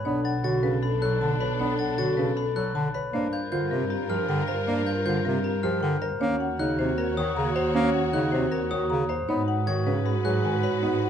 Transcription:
Already playing: marimba B4, grand piano C#5, glockenspiel B5
0.05 double bass section B1, bass clarinet B3, grand piano D4, string section D4 A4, french horn A4, marimba C#5
0.24 marimba F#5, glockenspiel A6
0.44 bass clarinet D3, grand piano F#4, marimba C#5, glockenspiel A6
0.63 bass clarinet C#3, grand piano C#4, marimba B4
0.83 marimba A4, glockenspiel B5
1.02 bass clarinet F#3, grand piano A4, marimba C#5, glockenspiel F#6
1.21 bass clarinet D3, marimba A5
1.40 marimba B4, grand piano C#5, glockenspiel B5
1.59 bass clarinet B3, grand piano D4, marimba C#5
1.79 marimba F#5, glockenspiel A6
1.98 bass clarinet D3, grand piano F#4, marimba C#5, glockenspiel A6
2.17 bass clarinet C#3, grand piano C#4, marimba B4
2.37 marimba A4, glockenspiel B5
2.56 bass clarinet F#3, grand piano A4, marimba C#5, glockenspiel F#6
2.75 bass clarinet D3, marimba A5
2.94 marimba B4, grand piano C#5, glockenspiel B5
3.13 double bass section G2, bass clarinet A#3, grand piano D4, string section F4 A#4, french horn A#4, marimba C5
3.33 marimba F5, glockenspiel G6
3.52 bass clarinet D3, grand piano F4, marimba C5, glockenspiel G6
3.71 bass clarinet C3, grand piano C4, marimba A#4
3.90 marimba G4, glockenspiel A#5
4.10 bass clarinet F3, grand piano G4, marimba C5, glockenspiel F6
4.29 bass clarinet D3, marimba G5
4.48 marimba A#4, grand piano C5, glockenspiel A#5
4.67 bass clarinet A#3, grand piano D4, marimba C5
4.86 marimba F5, glockenspiel G6
5.06 bass clarinet D3, grand piano F4, marimba C5, glockenspiel G6
5.25 bass clarinet C3, grand piano C4, marimba A#4
5.44 marimba G4, glockenspiel A#5
5.63 bass clarinet F3, grand piano G4, marimba C5, glockenspiel F6
5.83 bass clarinet D3, marimba G5
6.02 marimba A#4, grand piano C5, glockenspiel A#5
6.21 double bass section D#2, bass clarinet A#3, grand piano C#4, string section F#4 C#5, french horn F#4, marimba C#5
6.40 marimba F#5
6.59 bass clarinet C#3, grand piano D#4, marimba C#5, glockenspiel F#6
6.79 bass clarinet C3, grand piano C4, marimba C5
6.98 marimba A#4, glockenspiel A#5
7.17 bass clarinet D#3, grand piano F#4, marimba C#5, glockenspiel D#6
7.37 bass clarinet C#3, marimba A#5
7.56 grand piano C5, marimba C5, glockenspiel A#5
7.75 bass clarinet A#3, grand piano C#4, marimba C#5
7.94 marimba F#5
8.13 bass clarinet C#3, grand piano D#4, marimba C#5, glockenspiel F#6
8.32 bass clarinet C3, grand piano C4, marimba C5
8.51 marimba A#4, glockenspiel A#5
8.71 bass clarinet D#3, grand piano F#4, marimba C#5, glockenspiel D#6
8.90 bass clarinet C#3, marimba A#5
9.09 marimba C5, grand piano C5, glockenspiel A#5
9.29 double bass section G#2, bass clarinet B3, grand piano D#4, french horn F#4, string section F#4 B4, marimba C#5
9.48 marimba F#5
9.67 bass clarinet D#3, grand piano F#4, marimba C#5, glockenspiel G#6
9.86 bass clarinet C#3, grand piano C#4, marimba B4
10.06 marimba G#4, glockenspiel B5
10.25 bass clarinet F#3, grand piano G#4, marimba C#5, glockenspiel F#6
10.44 bass clarinet D#3, marimba G#5
10.63 marimba B4, grand piano C#5, glockenspiel B5
10.82 bass clarinet B3, grand piano D#4, marimba C#5
11.02 marimba F#5

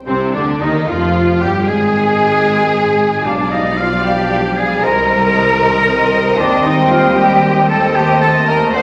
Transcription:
0.07 double bass section C2, tuba C2, french horn section C3, viola section C3, clarinet C4, flute C4, cello section C4, violin section C4, oboe C5
0.33 double bass section D2, tuba D2, french horn section D3, viola section D3, violin section D4, cello section D4, flute D4, clarinet D4, oboe D5
0.60 double bass section D#2, tuba D#2, french horn section D#3, viola section D#3, violin section D#4, clarinet D#4, cello section D#4, flute D#4, oboe D#5
0.87 tuba F1, double bass section F2, viola section F3, french horn section F3, violin section F4, cello section F4, flute F4, clarinet F4, oboe F5
1.41 tuba G1, double bass section G2, french horn section G3, viola section G3, violin section G4, clarinet G4, cello section G4, flute G4, oboe G5
1.66 tuba G#1, double bass section G#2, french horn section G#3, viola section G#3, violin section G#4, clarinet G#4, cello section G#4, flute G#4, oboe G#5
3.24 double bass section B1, tuba B1, french horn section F3 D4, viola section G3, cello section D4, clarinet D5, violin section D5 F5, oboe D5, flute F5
3.51 cello section D#4, clarinet D5, oboe D#5, flute F5
3.77 cello section F4, clarinet D5, oboe F5, flute F5
4.03 cello section G4, clarinet D5, flute F5, oboe G5
4.30 clarinet D5, flute F5
4.56 cello section G#4, clarinet D5, flute F5, oboe G#5
4.83 double bass section C2, tuba C2, french horn section D#3 C4, cello section A#4, clarinet C5, violin section C5 D#5, flute D#5, oboe A#5
5.09 clarinet C5, flute D#5
5.34 clarinet C5, flute D#5
5.61 clarinet C5, flute D#5
5.86 clarinet C5, flute D#5
6.13 clarinet C5, flute D#5
6.38 tuba D#2, double bass section D#2, viola section G3, french horn section G3, cello section D4, clarinet C5, oboe D5, flute G5
6.65 cello section D#4, oboe D#5
6.91 cello section F4, oboe F5
7.17 cello section G4, oboe G5
7.69 cello section A4, oboe A5
7.95 french horn section A3 C4, viola section A3, cello section G4, violin section C5 D#5, oboe G5, flute A5
8.21 cello section A4, oboe A5
8.47 cello section A#4, oboe A#5
8.73 tuba D2, double bass section D2, french horn section F#3 D4, cello section C5, violin section D5 F#5, clarinet D5, flute F#5, oboe C6

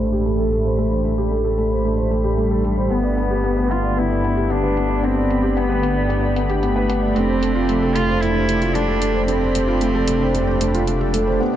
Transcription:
Already playing: detuned saw bass A1, analog synth pad A3 D4 G4 B5, felt piano G4 A4 C5
0.00 felt piano A3
0.12 felt piano G4, closed hi-hat
0.26 felt piano A3, closed hi-hat
0.39 felt piano A4
0.52 felt piano A3, closed hi-hat
0.65 felt piano C5
0.78 felt piano A3, closed hi-hat
0.92 felt piano C5
1.05 felt piano A3, closed hi-hat
1.18 felt piano G4
1.31 felt piano A3, closed hi-hat
1.45 felt piano A4
1.58 felt piano A3, closed hi-hat
1.72 felt piano C5
1.84 felt piano A3, closed hi-hat
1.98 felt piano C5
2.11 felt piano A3, closed hi-hat
2.24 felt piano G4, closed hi-hat
2.37 cello G3, felt piano A3, closed hi-hat
2.51 felt piano A4
2.64 felt piano A3, closed hi-hat
2.77 felt piano C5
2.90 detuned saw bass G1, felt piano B3, cello B3, closed hi-hat
3.04 felt piano D5
3.17 felt piano B3, closed hi-hat
3.30 felt piano G4
3.44 felt piano B3, closed hi-hat
3.57 felt piano B4
3.70 felt piano B3, cello F4, closed hi-hat
3.84 felt piano D5
3.97 felt piano B3, cello E4, closed hi-hat
4.11 felt piano D5
4.24 felt piano B3, closed hi-hat
4.37 felt piano G4, closed hi-hat
4.50 felt piano B3, cello D4, closed hi-hat
4.63 felt piano B4
4.77 felt piano B3, closed hi-hat
4.90 felt piano D5
5.03 felt piano B3, cello C4, closed hi-hat
5.16 felt piano D5
5.29 felt piano B3, closed hi-hat
5.43 felt piano G4
5.56 felt piano B3, cello B3, closed hi-hat
5.69 felt piano B4
5.83 felt piano B3, closed hi-hat
5.96 felt piano D5
6.09 felt piano B3, closed hi-hat
6.23 felt piano D5
6.36 felt piano B3, closed hi-hat
6.49 felt piano G4, closed hi-hat
6.62 cello A3, felt piano B3, closed hi-hat
6.76 felt piano B4
6.90 felt piano B3, closed hi-hat
7.03 felt piano D5
7.15 detuned saw bass F1, analog synth pad A3, felt piano A3, cello C4, closed hi-hat
7.28 felt piano C5
7.42 felt piano A3, closed hi-hat
7.55 felt piano F4
7.69 felt piano A3, closed hi-hat
7.82 felt piano A4
7.95 felt piano A3, cello F4, closed hi-hat
8.09 felt piano C5
8.21 felt piano A3, cello E4, closed hi-hat
8.35 felt piano C5
8.48 felt piano A3, closed hi-hat
8.61 felt piano F4, closed hi-hat
8.75 felt piano A3, cello D4, closed hi-hat
8.88 felt piano A4
9.02 felt piano A3, closed hi-hat
9.14 felt piano C5
9.28 felt piano A3, cello C4, closed hi-hat
9.41 felt piano C5
9.55 felt piano A3, closed hi-hat
9.68 felt piano F4
9.81 felt piano A3, closed hi-hat
9.95 felt piano A4
10.08 felt piano A3, closed hi-hat
10.21 felt piano C5
10.34 felt piano A3, closed hi-hat
10.47 felt piano C5
10.61 felt piano A3, closed hi-hat
10.75 felt piano F4, closed hi-hat
10.87 felt piano A3, closed hi-hat
11.01 felt piano A4
11.13 felt piano A3, closed hi-hat
11.27 felt piano C5
11.40 analog synth pad C3, felt piano B3
11.53 felt piano C5

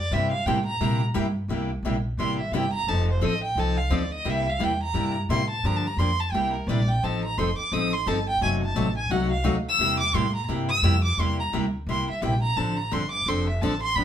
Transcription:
Already playing: violin D5
0.11 upright bass G2, steel-string acoustic guitar C3 G3 A#3 E4 G4, violin E5
0.32 violin F5
0.46 upright bass A2, steel-string acoustic guitar C3 G3 A#3 E4 G4, violin G5
0.66 violin A#5
0.80 upright bass A#2, steel-string acoustic guitar C3 G3 A#3 E4 G4
1.14 upright bass G2, steel-string acoustic guitar C3 G3 A#3 E4 G4
1.48 upright bass C2, steel-string acoustic guitar C3 G3 A#3 E4 G4
1.83 upright bass A#1, steel-string acoustic guitar C3 G3 A#3 E4 G4
2.17 upright bass A1, steel-string acoustic guitar C3 G3 A#3 E4 G4, violin C6
2.40 violin E5
2.51 upright bass G1, steel-string acoustic guitar C3 G3 A#3 E4 G4, violin G5
2.74 violin A#5
2.87 upright bass F1, steel-string acoustic guitar F3 C4 D#4 A4, violin A5
3.12 violin C5
3.21 upright bass A1, steel-string acoustic guitar F3 C4 D#4 A4, violin D#5
3.44 violin G5
3.55 upright bass C2, steel-string acoustic guitar F3 C4 D#4 A4, violin A5
3.77 violin F5
3.90 upright bass D2, steel-string acoustic guitar F3 C4 D#4 A4, violin D5
4.14 violin D#5
4.25 upright bass C2, steel-string acoustic guitar C3 G3 A#3 E4 G4
4.30 violin E5
4.50 violin F5
4.59 upright bass E2, steel-string acoustic guitar C3 G3 A#3 E4 G4
4.63 violin G5
4.84 violin A#5
4.94 upright bass G2, steel-string acoustic guitar C3 G3 A#3 E4 G4
5.29 upright bass A2, steel-string acoustic guitar C3 G3 A#3 E4 G4, violin C6
5.50 violin A5
5.63 upright bass G2, steel-string acoustic guitar D3 F3 A#3 D4 G4, violin A#5
5.76 violin A5
5.87 violin A#5
5.97 upright bass F2, steel-string acoustic guitar D3 F3 A#3 D4 G4, violin C6
6.20 violin A5
6.32 upright bass C2, steel-string acoustic guitar C3 G3 A#3 E4 G4, violin G5
6.53 violin A#4
6.67 upright bass A#1, steel-string acoustic guitar C3 G3 A#3 E4 G4, violin D5
6.88 violin G5
7.03 upright bass A1, steel-string acoustic guitar F3 C4 D#4 A4, violin A5
7.25 violin A#5
7.38 upright bass F1, steel-string acoustic guitar F3 C4 D#4 A4, violin C6
7.58 violin D6, muted upright bass stroke
7.72 upright bass A1, steel-string acoustic guitar F3 C4 D#4 A4, violin D#6
7.93 violin C6
8.06 upright bass G1, steel-string acoustic guitar F3 C4 D#4 A4, violin A5
8.29 violin G5
8.41 upright bass F#1, steel-string acoustic guitar C3 F#3 A3 D#4 F#4, violin G#5
8.64 violin A5
8.75 upright bass A1, steel-string acoustic guitar C3 F#3 A3 D#4 F#4
8.98 violin G#5
9.09 upright bass C2, steel-string acoustic guitar C3 F#3 A3 D#4 F#4, violin F#5
9.32 violin F5
9.44 upright bass D2, steel-string acoustic guitar C3 F#3 A3 D#4 F#4
9.69 violin E6
9.78 upright bass E2, steel-string acoustic guitar C3 G3 A#3 E4 G4
10.00 violin D6
10.13 upright bass A2, steel-string acoustic guitar C3 G3 A#3 E4 G4, violin C6
10.36 violin A#5
10.48 upright bass G2, steel-string acoustic guitar C3 G3 A#3 E4 G4
10.69 violin E6
10.82 upright bass F2, steel-string acoustic guitar C3 G3 A#3 E4 G4
11.05 violin D6
11.17 upright bass E2, steel-string acoustic guitar C3 G3 A#3 E4 G4, violin C6
11.40 violin A#5
11.53 upright bass D2, steel-string acoustic guitar C3 G3 A#3 E4 G4
11.87 upright bass C2, steel-string acoustic guitar C3 G3 A#3 E4 G4, violin C6
12.08 violin E5, muted upright bass stroke
12.22 upright bass A#1, steel-string acoustic guitar C3 G3 A#3 E4 G4, violin G5
12.43 violin A#5
12.56 upright bass A1, steel-string acoustic guitar D3 F3 C4 D4 A4, violin A5
12.76 violin A#5
12.91 upright bass G1, steel-string acoustic guitar D3 F3 C4 D4 A4, violin C6
13.12 violin D6
13.26 upright bass F1, steel-string acoustic guitar D3 F3 C4 D4 A4, violin C6
13.49 violin E5
13.61 upright bass A1, steel-string acoustic guitar D3 F3 C4 D4 A4, violin A5
13.83 violin C6
13.95 upright bass G1, steel-string acoustic guitar D3 F3 B3 D4 G4, violin B5

